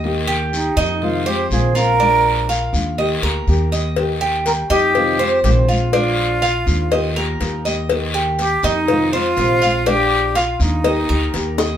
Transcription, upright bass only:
X:1
M:4/4
L:1/8
Q:1/4=122
K:Eb
V:1 name="Upright bass" clef=bass
E,,3 F,,3 B,,,2- | B,,,3 E,,2 D,, E,,2- | E,,3 F,,3 B,,,2- | B,,,3 E,,3 E,,2- |
E,,3 F,,3 B,,,2- | B,,,3 E,,2 D,, E,,2 |]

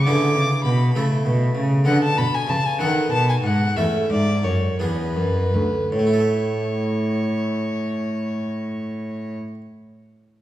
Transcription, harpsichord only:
X:1
M:6/8
L:1/8
Q:3/8=55
K:A
V:1 name="Harpsichord"
[B,EG]3 [A,EA]3 | [B,A]3 [B,A]3 | [A,CA]3 [B,DG]3 | [A,,A,EAe]6- |
[A,,A,EAe]6 |]
V:2 name="Harpsichord" clef=bass
D, C, B,, C, B,, C, | D, B,, C, ^D, B,, G,, | E,, G,, F,, E,, F,, D,, | z6 |
z6 |]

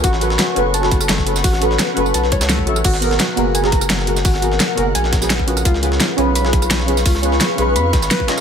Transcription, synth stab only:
X:1
M:4/4
L:1/16
Q:1/4=171
K:G#dor
V:1 name="Synth stab"
[CF=AB]2 [CFAB]4 [CFAB]3 [CFAB]4- [CFAB] [CFAB] z | z2 [CF=AB]4 [CFAB]4- [CFAB] z3 [CFA=e] z | z2 [B,FGA]4 [B,FGA]3 [B,FGa]4- [B,FGa] [B,FGA] z | z2 [B,FGA]4 [B,FGA]4- [B,FGA] [B,FGB]3 [CEGB]2- |
[CEGB]2 [CEGB]4 [CEGB]3 [CEGB]4- [CEGB] [CEGB] z | z2 [CEGB]4 [CEGB]4- [CEGB] z3 [CEGd] z |]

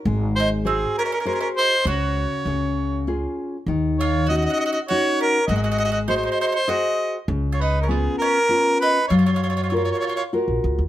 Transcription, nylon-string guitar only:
X:1
M:3/4
L:1/8
Q:"Swing" 1/4=100
K:F#
V:1 name="Nylon-string guitar"
G,2 [FG^B]2 [FGB]2 | C,2 C,2 [CEG]2 | D,2 [CDF]2 [CDF]2 | G,2 [FG^B]2 [FGB]2 |
C,2 [B,CE]2 [B,CE]2 | F,2 [EFA]2 [EFA]2 |]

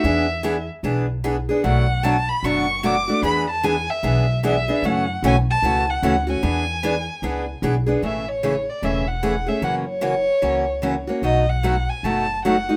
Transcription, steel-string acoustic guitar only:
X:1
M:4/4
L:1/8
Q:"Swing" 1/4=150
K:A
V:1 name="Steel-string acoustic guitar"
[E,B,DG] z [E,B,DG] z [E,B,DG] z [E,B,DG] [B,DG] | [B,,F,A,DF] z [B,,F,A,DF] z [B,,F,A,DF] z [B,,F,A,DF] [A,DF] | [E,B,DG] z [E,B,DG] z [E,B,DG] z [E,B,DG] [B,DG] | [C,E,A,CF] z [C,E,A,CF] z [C,E,A,CF] z [C,E,A,CF] [A,CF] |
[E,B,DG] z [E,B,DG] z [E,B,DG] z [E,B,DG] [B,DG] | [C,E,A,CG] z [C,E,A,CG] z [C,E,A,CG] z [C,E,A,CG] [A,CG] | [C,E,^A,CF] z [C,E,A,CF] z [C,E,A,CF] z [C,E,A,CF] [A,CF] | [B,,F,A,^DF] z [B,,F,A,DF] z [B,,F,A,DF] z [B,,F,A,DF] [A,DF] |]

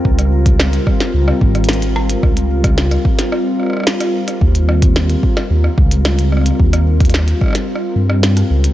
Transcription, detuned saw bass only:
X:1
M:4/4
L:1/8
Q:1/4=110
K:Dblyd
V:1 name="Detuned saw bass" clef=bass
D,,3 z D,, A,,,3 | D,,3 z4 z | E,,3 z E,, D,,3 | E,,3 z2 G,,2 D,, |]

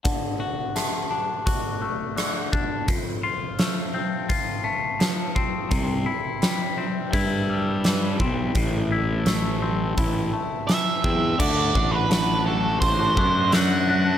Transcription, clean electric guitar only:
X:1
M:4/4
L:1/16
Q:1/4=85
K:Dmix
V:1 name="Clean electric guitar"
D,2 F2 A,2 D2 F2 A,2 D,2 D2 | =F,,2 =F2 A,2 C2 F2 A,2 =F,2 C2 | C,2 E2 G,2 C2 E2 G,2 E,2 C2 | A,,2 E2 A,2 C2 E2 A,2 E,2 C2 |
[D,A,DF] [A,DF] [D,A,DF]2 [D,A,DF]2 [D,A,DF] [A,DF]2 [A,DF] [D,A,DF] [A,DF] [D,A,DF]2 [D,A,DF] [A,DF] |]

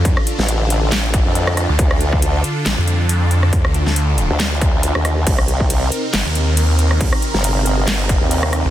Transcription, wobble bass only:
X:1
M:4/4
L:1/16
Q:"Swing 16ths" 1/4=138
K:Dphr
V:1 name="Wobble bass" clef=bass
z3 A,,,8 F,,4 z | D,,6 z2 A,,, z6 z | z6 z D,,6 E,,3 | C,,6 z2 G,,, z6 z |
z3 G,,,8 E,,4 z |]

